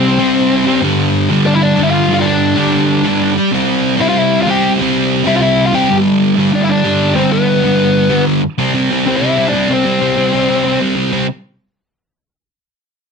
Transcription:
Already playing: distorted electric guitar C3 G3 C4, lead electric guitar C4 C5
0.19 distorted electric guitar C3 G3 C4
0.66 distorted electric guitar C3 G3 C4
0.81 distorted electric guitar G2 D3 G3
1.28 distorted electric guitar G2 D3 G3
1.46 lead electric guitar D4 D5
1.54 lead electric guitar E4 E5
1.63 lead electric guitar D4 D5
1.76 distorted electric guitar G2 D3 G3
1.83 lead electric guitar E4 E5
1.90 lead electric guitar F4 F5
2.08 distorted electric guitar G2 D3 G3
2.14 lead electric guitar F5
2.18 lead electric guitar F4 D5
2.25 lead electric guitar D4
2.56 distorted electric guitar G2 D3 G3
3.04 distorted electric guitar G2 D3 G3
3.52 distorted electric guitar C3 G3 C4
3.97 distorted electric guitar G3 C4, lead electric guitar E4
4.01 distorted electric guitar C3, lead electric guitar E5
4.08 lead electric guitar F4 F5
4.17 lead electric guitar E4 E5
4.41 lead electric guitar F4 F5
4.46 distorted electric guitar C3 G3 C4, lead electric guitar G4
4.50 lead electric guitar G5
4.78 distorted electric guitar C3 G3 C4
5.24 distorted electric guitar C3 G3 C4, lead electric guitar E4
5.28 lead electric guitar E5
5.35 lead electric guitar F4 F5
5.42 lead electric guitar E4 E5
5.66 lead electric guitar F4 F5
5.73 distorted electric guitar C3 G3 C4, lead electric guitar G4 G5
5.89 distorted electric guitar G2 D3 G3
6.36 distorted electric guitar G2 D3 G3
6.53 lead electric guitar D4 D5
6.61 lead electric guitar E4 E5
6.69 lead electric guitar D4 D5
6.84 distorted electric guitar G2 D3 G3
7.15 distorted electric guitar G2 D3 G3, lead electric guitar C4 C5
7.32 lead electric guitar B3 B4
7.63 distorted electric guitar G2 D3 G3
8.10 distorted electric guitar G2 D3 G3
8.58 distorted electric guitar C3 G3 C4
8.74 distorted electric guitar C3 G3 C4
8.91 distorted electric guitar C3 G3 C4
9.06 distorted electric guitar C3 G3 C4, lead electric guitar C4 C5
9.16 lead electric guitar E4 E5
9.22 distorted electric guitar C3 G3 C4
9.37 distorted electric guitar C3 G3 C4
9.48 lead electric guitar D4 D5
9.53 distorted electric guitar C3 G3 C4
9.69 distorted electric guitar C3 G3 C4, lead electric guitar C4 C5
9.84 distorted electric guitar C3 G3 C4
10.01 distorted electric guitar C3 G3 C4
10.16 distorted electric guitar C3 G3 C4
10.33 distorted electric guitar C3 G3 C4
10.49 distorted electric guitar C3 G3 C4
10.64 distorted electric guitar C3 G3 C4
10.80 distorted electric guitar C3 G3 C4
10.96 distorted electric guitar C3 G3 C4
11.12 distorted electric guitar C3 G3 C4

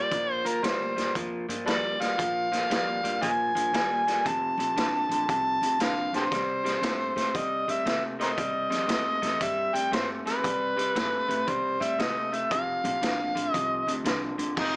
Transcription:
Already playing: harmonica D5
0.11 upright bass A#1, clean electric guitar A#2 F3, kick, closed hi-hat
0.32 harmonica C5
0.45 upright bass D#2, clean electric guitar A#2 F3, harmonica A#4, closed hi-hat
0.63 upright bass D2, clean electric guitar A#2 G3, harmonica C5, snare, closed hi-hat
0.96 upright bass D2, clean electric guitar A#2 G3, snare, closed hi-hat
1.15 upright bass F2, clean electric guitar A#2 F3, kick, closed hi-hat
1.49 upright bass G2, clean electric guitar A#2 F3, closed hi-hat
1.66 upright bass F2, clean electric guitar A#2 G3, harmonica A4 B4 D5, snare, closed hi-hat
2.00 upright bass D2, clean electric guitar A#2 G3, harmonica F5, snare, closed hi-hat
2.17 upright bass A#1, clean electric guitar A#2 F3, kick, closed hi-hat
2.52 clean electric guitar A#2 F3, snare, closed hi-hat
2.70 upright bass F2, clean electric guitar A#2 G3, snare, closed hi-hat
3.03 upright bass G2, clean electric guitar A#2 G3, closed hi-hat
3.21 clean electric guitar A#2 F3, upright bass A#2, harmonica D#5 F5 G#5, kick, closed hi-hat
3.55 upright bass G2, clean electric guitar A#2 F3, closed hi-hat
3.73 upright bass D#2, clean electric guitar A#2 G3, snare, closed hi-hat
4.07 clean electric guitar A#2 G3, snare, closed hi-hat
4.24 upright bass F1, clean electric guitar F2 C3, harmonica A5, kick, closed hi-hat
4.57 upright bass A#1, clean electric guitar F2 C3, closed hi-hat
4.76 upright bass A1, clean electric guitar F2 D3, snare, closed hi-hat
5.09 upright bass A1, clean electric guitar F2 D3, closed hi-hat
5.28 upright bass C2, clean electric guitar F2 C3, harmonica A5, kick, closed hi-hat
5.61 upright bass D2, clean electric guitar F2 C3, closed hi-hat
5.79 upright bass C2, clean electric guitar F2 D3, harmonica F5, snare, closed hi-hat
6.12 upright bass A1, clean electric guitar F2 D3, harmonica G4 A4 C5, snare, closed hi-hat
6.31 upright bass C2, clean electric guitar C3 G3, kick, snare, closed hi-hat
6.64 clean electric guitar C3 G3, snare, closed hi-hat
6.81 upright bass G2, clean electric guitar C3 A3, snare, closed hi-hat
7.16 upright bass A2, clean electric guitar C3 A3, snare, closed hi-hat
7.34 clean electric guitar C3 G3, upright bass C3, harmonica D#5, kick, closed hi-hat
7.68 upright bass A2, clean electric guitar C3 G3, harmonica E5, closed hi-hat
7.85 upright bass C3, clean electric guitar C3 A3, harmonica E5, snare, closed hi-hat
8.19 clean electric guitar C3 A3, harmonica A#4 C5 D#5, snare, closed hi-hat
8.37 upright bass C2, clean electric guitar C3 G3, kick, closed hi-hat
8.70 upright bass F2, clean electric guitar C3 G3, snare, closed hi-hat
8.87 upright bass E2, clean electric guitar C3 A3, snare, closed hi-hat
9.22 upright bass E2, clean electric guitar C3 A3, snare, closed hi-hat
9.40 upright bass G2, clean electric guitar C3 G3, harmonica E5, kick, closed hi-hat
9.74 upright bass A2, clean electric guitar C3 G3, harmonica G5, closed hi-hat
9.92 upright bass G2, clean electric guitar C3 A3, harmonica C5, snare, closed hi-hat
10.25 upright bass E2, clean electric guitar C3 A3, harmonica B4, snare, closed hi-hat
10.43 upright bass C2, clean electric guitar C3 G3, kick, closed hi-hat
10.77 clean electric guitar C3 G3, closed hi-hat
10.95 upright bass G2, clean electric guitar C3 A3, snare, closed hi-hat
11.28 upright bass A2, clean electric guitar C3 A3, closed hi-hat
11.47 clean electric guitar C3 G3, upright bass C3, harmonica C5, kick, closed hi-hat
11.80 upright bass A2, clean electric guitar C3 G3, harmonica E5, closed hi-hat
11.98 upright bass C3, clean electric guitar C3 A3, harmonica D#5, snare, closed hi-hat
12.32 clean electric guitar C3 A3, harmonica E5, closed hi-hat
12.50 upright bass F1, clean electric guitar F2 C3, harmonica F5, kick, closed hi-hat
12.84 upright bass A#1, clean electric guitar F2 C3, closed hi-hat
13.01 upright bass A1, clean electric guitar F2 D3, snare, closed hi-hat
13.35 upright bass A1, clean electric guitar F2 D3, closed hi-hat
13.52 upright bass C2, clean electric guitar F2 C3, harmonica D#5, kick, closed hi-hat
13.87 upright bass D2, clean electric guitar F2 C3, closed hi-hat
14.04 upright bass C2, clean electric guitar F2 D3, snare, closed hi-hat
14.38 upright bass A1, clean electric guitar F2 D3, closed hi-hat
14.56 upright bass F1, clean electric guitar F2 C3, harmonica D#4, kick, snare, crash

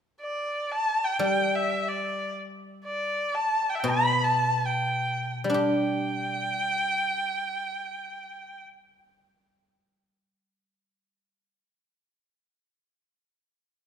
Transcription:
0.21 erhu D5
0.72 erhu A5
1.04 erhu G5
1.19 guzheng G3, erhu G5
1.55 erhu E5
1.88 erhu D5
2.85 erhu D5
3.34 erhu A5
3.70 erhu G5
3.75 erhu E5
3.80 erhu G5
3.84 guzheng B2
3.89 erhu B5
4.24 erhu A5
4.66 erhu G5
5.44 guzheng G3
5.50 guzheng D4
5.54 guzheng G4, erhu G5

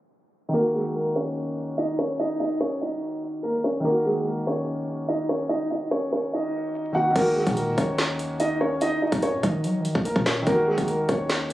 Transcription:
0.49 felt piano D#3
0.53 felt piano A#3, grand piano A#3 A#4
0.58 felt piano F#4
0.74 grand piano G#3 G#4
0.96 grand piano A#3 A#4
1.16 grand piano C#4 C#5
1.78 grand piano D#4 D#5
1.99 grand piano C#4 C#5
2.19 grand piano D#4 D#5
2.40 grand piano D#4 D#5
2.61 grand piano C#4 C#5
2.81 grand piano D#4 D#5
3.43 grand piano A#3 A#4
3.64 grand piano C#4 C#5
3.80 felt piano D#3
3.84 felt piano A#3, grand piano A#3 A#4
3.90 felt piano F#4
4.06 grand piano G#3 G#4
4.26 grand piano A#3 A#4
4.47 grand piano C#4 C#5
5.08 grand piano D#4 D#5
5.29 grand piano C#4 C#5
5.49 grand piano D#4 D#5
5.71 grand piano D#4 D#5
5.91 grand piano C#4 C#5
6.12 grand piano C#4 C#5
6.33 grand piano D#4 D#5
6.93 felt piano D#3 A#3, grand piano F#4 F#5
6.97 felt piano F#4
7.11 felt piano D#3
7.15 808-style bass D#2, felt piano A#3, grand piano A#3 A#4, kick, closed hi-hat, crash
7.20 felt piano F#4
7.36 grand piano G#3 G#4
7.47 808-style bass A#2, kick, closed hi-hat
7.57 grand piano A#3 A#4, closed hi-hat
7.78 808-style bass D#2, grand piano C#4 C#5, kick, closed hi-hat
7.98 snare, clap, closed hi-hat
8.19 closed hi-hat
8.40 grand piano D#4 D#5, closed hi-hat
8.61 grand piano C#4 C#5
8.81 grand piano D#4 D#5, closed hi-hat
9.02 grand piano D#4 D#5
9.12 808-style bass D#2, kick, closed hi-hat
9.22 grand piano C#4 C#5, closed hi-hat
9.33 808-style bass A#2
9.43 808-style bass D#3, grand piano D#4 D#5, kick, closed hi-hat
9.64 808-style bass F#3, closed hi-hat
9.80 808-style bass D#3
9.85 closed hi-hat
9.95 808-style bass D#2, kick
10.05 grand piano A#3 A#4, closed hi-hat
10.16 808-style bass A#2, kick
10.26 grand piano C#4 C#5, snare, clap
10.42 felt piano D#3
10.46 808-style bass D#2, felt piano A#3, grand piano A#3 A#4, kick, closed hi-hat
10.52 felt piano F#4
10.67 grand piano G#3 G#4
10.78 808-style bass D#2, kick, closed hi-hat
10.88 grand piano A#3 A#4, closed hi-hat
11.09 808-style bass D#2, grand piano C#4 C#5, kick, closed hi-hat
11.29 snare, clap, closed hi-hat

